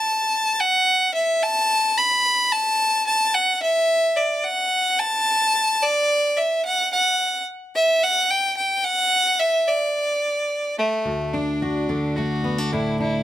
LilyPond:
<<
  \new Staff \with { instrumentName = "Fiddle" } { \time 4/4 \key d \major \tempo 4 = 109 a''4 fis''4 e''8 a''4 b''8~ | b''8 a''4 a''8 fis''8 e''4 d''8 | fis''4 a''4. d''4 e''8 | fis''8 fis''4 r8 e''8 fis''8 g''8 g''8 |
fis''4 e''8 d''2 a8~ | a8 d'4. fis'4 e'8 e'8 | }
  \new Staff \with { instrumentName = "Steel-string acoustic guitar" } { \time 4/4 \key d \major << { r1 | r1 | r1 | r1 |
r1 | r8 d'8 fis'8 d'8 a8 b16 d'16 d'8 d'8 | } \\ { r1 | r1 | r1 | r1 |
r1 | d,4. d4. a,4 | } >> }
>>